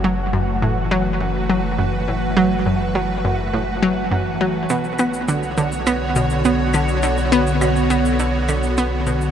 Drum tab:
SH |----------------|----------------|xxxxxxxxx-xxx-xx|xxxxxxxxx-xxx-xx|
CL |----------------|----------------|--x-----x-----x-|----x-----x-----|